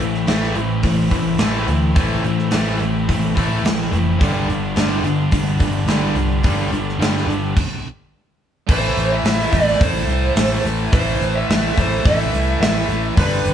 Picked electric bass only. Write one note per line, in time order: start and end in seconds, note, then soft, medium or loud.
0.00 0.26 A1 medium
0.28 0.54 A1 medium
0.56 0.82 A1 medium
0.84 1.10 A1 medium
1.11 1.38 A1 medium
1.39 1.66 A1 medium
1.68 1.94 D2 medium
1.96 2.22 A1 loud
2.24 2.50 A1 medium
2.53 2.79 A1 medium
2.81 3.07 A1 medium
3.09 3.35 A1 medium
3.37 3.63 A1 medium
3.64 3.90 A1 medium
3.92 4.21 F1 medium
4.21 4.47 G1 medium
4.49 4.75 G1 medium
4.75 5.02 G1 medium
5.02 5.29 G1 medium
5.32 5.58 G1 medium
5.60 5.86 G1 medium
5.86 6.13 G1 loud
6.15 6.42 C2 medium
6.45 6.70 G1 medium
6.71 6.98 G1 medium
6.99 7.26 G1 medium
7.27 7.54 G1 medium
8.69 8.89 A1 medium
8.97 9.18 A1 loud
9.24 9.45 A1 medium
9.53 9.73 A1 medium
9.81 10.01 A1 loud
10.07 10.28 C2 medium
10.36 10.57 A1 loud
10.65 10.86 A1 medium
10.93 11.13 A1 medium
11.21 11.42 A1 loud
11.50 11.70 A1 medium
11.78 11.98 A1 medium
12.05 12.26 A1 medium
12.33 12.54 C2 medium
12.60 12.81 A1 loud
12.89 13.09 A1 medium
13.17 13.38 G1 medium
13.45 13.54 G1 loud